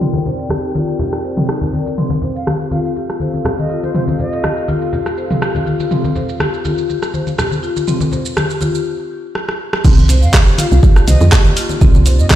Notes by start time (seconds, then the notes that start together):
Already playing: C4 D#4 A#4 D5 G5
0.01 C4, mid tom, shaker
0.14 high conga, shaker
0.25 C5, muted conga, low conga, shaker
0.39 shaker
0.49 G4, cross-stick, muted conga, high conga, shaker
0.64 shaker
0.75 F4, muted conga, high conga, shaker
0.88 shaker
0.99 G4, muted conga, low conga, shaker
1.13 cross-stick, shaker
1.24 C5, shaker
1.37 mid tom, muted conga, shaker
1.49 D#4, cross-stick, shaker
1.61 muted conga, high conga, low conga, shaker
1.73 A#4, high conga, shaker
1.86 muted conga, shaker
1.98 C4 F4 A4 F5, mid tom, shaker
2.10 high conga, shaker
2.21 C5, muted conga, low conga, shaker
2.36 F5, shaker
2.47 G4, cross-stick, muted conga, high conga, shaker
2.60 shaker
2.71 F4 F5, muted conga, high conga, shaker
2.85 F5, shaker
2.96 G4, muted conga, shaker
3.10 cross-stick, shaker
3.20 C5, high conga, shaker
3.34 muted conga, shaker
3.45 G4, cross-stick, low conga, shaker
3.59 D#5, muted conga, high conga, shaker
3.70 F4, shaker
3.83 C5, muted conga, shaker
3.94 C4 C5, mid tom, shaker
4.08 high conga, shaker
4.19 C5 D#5, muted conga, low conga, shaker
4.32 shaker
4.44 G4, cross-stick, muted conga, high conga, shaker
4.57 shaker
4.68 F4, muted conga, high conga, shaker
4.82 shaker
4.92 G4, muted conga, low conga, shaker
5.06 cross-stick, shaker
5.17 C5, shaker
5.31 mid tom, muted conga, shaker
5.42 G4, cross-stick, shaker
5.55 muted conga, high conga, low conga, shaker
5.66 F4, high conga, shaker
5.80 muted conga, shaker
5.91 C4, mid tom, shaker
6.04 high conga, shaker
6.15 C5, muted conga, low conga, shaker
6.29 shaker
6.40 G4, cross-stick, muted conga, high conga, shaker
6.54 shaker
6.65 F4, muted conga, high conga, shaker
6.78 shaker
6.89 G4, muted conga, shaker
7.02 cross-stick, shaker
7.14 C5, high conga, shaker
7.27 muted conga, shaker
7.38 G4, cross-stick, low conga, shaker
7.51 muted conga, high conga, shaker
7.63 F4, shaker
7.77 muted conga, shaker
7.88 C4, mid tom, shaker
8.01 high conga, shaker
8.12 C5, muted conga, low conga, shaker
8.26 shaker
8.37 G4, cross-stick, muted conga, high conga, shaker
8.50 shaker
8.61 F4, muted conga, high conga, shaker
8.75 shaker
9.35 cross-stick
9.49 cross-stick
9.73 cross-stick
9.84 C2 A#3 C4 D#4 F4 D5, kick, mid tom, crash, shaker
9.97 high conga, shaker
10.08 C5, open hi-hat, muted conga, low conga, shaker
10.22 F2 F5, shaker
10.33 G4, kick, cross-stick, clap, muted conga, high conga, shaker
10.47 shaker
10.58 F4 F5, open hi-hat, muted conga, high conga, shaker
10.71 C2 F5, shaker
10.83 G4, kick, muted conga, shaker
10.96 cross-stick, shaker
11.07 C2 C5 D#5, open hi-hat, high conga, shaker
11.21 F2, muted conga, shaker
11.32 G4, kick, cross-stick, clap, low conga, shaker
11.45 muted conga, high conga, shaker
11.57 F4, open hi-hat, shaker
11.69 muted conga, shaker
11.81 C2 C4, kick, mid tom, shaker
11.95 high conga, shaker
12.06 C5, open hi-hat, muted conga, low conga, shaker
12.19 F2 D#5, shaker
12.30 G4 D#5, kick, cross-stick, clap, muted conga, high conga, shaker